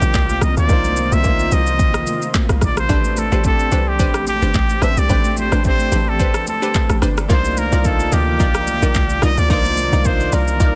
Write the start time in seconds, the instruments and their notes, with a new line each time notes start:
Already playing: analog synth pad C3 D#3 A#3 C4 F4, grand piano A#3 D4 D#4 F4 C5, muted trumpet G4
0.02 log drum bass A#1, shaker
0.14 log drum bass C2, kick, clap, high conga, shaker
0.29 shaker
0.41 log drum bass C2, muted trumpet D#5, cross-stick, high conga, low conga, shaker
0.57 log drum bass D2, muted trumpet D5, shaker
0.68 log drum bass C2, grand piano A#3 D4 D#4 F4, kick, low conga, shaker
0.72 grand piano C5
0.84 high conga, shaker
0.97 high conga, shaker
1.12 log drum bass C2, muted trumpet E5, high conga, shaker
1.23 grand piano A#3 C4 D#4 F4 C5, kick, shaker
1.39 shaker
1.52 log drum bass C2, muted trumpet D#5, low conga, shaker
1.67 shaker
1.79 kick, low conga, shaker
1.94 cross-stick, shaker
2.07 high conga, shaker
2.22 shaker
2.34 kick, clap, high conga, shaker
2.49 log drum bass C2, cross-stick, shaker
2.61 log drum bass A#1, muted trumpet D5, kick, cross-stick, high conga, low conga, shaker
2.77 muted trumpet C5, cross-stick, shaker
2.88 log drum bass A1, grand piano A3 C4 D4 G4, analog synth pad A3 C4 G4, synth stab D4 G4 B4 C5, kick, low conga, shaker
2.92 grand piano B4
3.04 high conga, shaker
3.17 muted trumpet A4, high conga, shaker
3.32 log drum bass A1, synth stab D4 G4 B4 C5, high conga, shaker
3.43 grand piano A3 C4 D4 G4 A4, muted trumpet A4, kick, shaker
3.59 shaker
3.72 log drum bass C2, synth stab D4 G4 B4 C5, low conga, shaker
3.88 muted trumpet G4
3.99 log drum bass A1, synth stab D4 G4 B4 C5, kick, low conga, shaker
4.14 cross-stick, shaker
4.27 muted trumpet G4, high conga, shaker
4.42 log drum bass G1, synth stab D4 G4 B4 C5, shaker
4.54 log drum bass A1, kick, clap, high conga, shaker
4.70 shaker
4.82 log drum bass A1, synth stab D4 G4 B4 C5, muted trumpet E5, cross-stick, high conga, low conga, shaker
4.97 log drum bass C2, muted trumpet D5, shaker
5.08 log drum bass A1, grand piano A3 C4 D4 G4 D5, synth stab D4 G4 B4 C5, kick, low conga, shaker
5.25 high conga, shaker
5.37 muted trumpet C5, high conga, shaker
5.52 log drum bass A1, synth stab D4 G4 B4 C5, cross-stick, high conga, shaker
5.63 grand piano A3 C4 D4 G4 C5, muted trumpet C5, kick, shaker
5.80 shaker
5.92 log drum bass A1, synth stab D4 G4 B4 C5, low conga, shaker
6.09 muted trumpet A4
6.19 synth stab D4 G4 B4 C5, kick, low conga, shaker
6.34 cross-stick, shaker
6.47 muted trumpet A4, high conga, shaker
6.62 synth stab D4 G4 B4 C5, shaker
6.74 kick, clap, high conga, shaker
6.90 log drum bass A1, cross-stick, shaker
7.02 log drum bass G1, synth stab D4 G4 B4 C5, cross-stick, high conga, low conga, shaker
7.18 cross-stick, shaker
7.28 log drum bass C2, analog synth pad C3 D#3 A#3 F4 D5, grand piano A#3 D4 D#4 F4, synth stab D#4 F4 A#4 D5, muted trumpet C5, kick, low conga, shaker
7.32 grand piano C5
7.45 high conga, shaker
7.57 muted trumpet A#4, high conga, shaker
7.72 log drum bass C2, synth stab D#4 F4 A#4 D5, high conga, shaker
7.83 grand piano A#3 D4 D#4 F4 A4, muted trumpet A4, kick, shaker
8.00 shaker
8.12 log drum bass D2, synth stab D#4 F4 A#4 D5, muted trumpet G4, low conga, shaker
8.40 log drum bass C2, synth stab D#4 F4 A#4 D5, kick, low conga, shaker
8.55 cross-stick, shaker
8.67 high conga, shaker
8.82 log drum bass A#1, synth stab D#4 F4 A#4 D5, shaker
8.95 log drum bass C2, kick, clap, high conga, shaker
9.10 shaker
9.22 log drum bass C2, synth stab D#4 F4 A#4 D5, muted trumpet D#5, cross-stick, high conga, low conga, shaker
9.38 log drum bass D2, muted trumpet D5, shaker
9.49 log drum bass C2, grand piano A#3 D4 D#4 F4, synth stab D#4 F4 A#4 D5, muted trumpet D5, kick, low conga, shaker
9.53 grand piano C5
9.65 high conga, shaker
9.77 high conga, shaker
9.93 log drum bass C2, synth stab D#4 F4 A#4 D5, high conga, shaker
10.04 grand piano A#3 D4 D#4 F4 C5, muted trumpet C5, kick, shaker
10.20 shaker
10.32 log drum bass C2, synth stab D#4 F4 A#4 D5, muted trumpet A#4, low conga, shaker
10.48 shaker
10.60 log drum bass C2, synth stab D#4 F4 A#4 D5, kick, low conga, shaker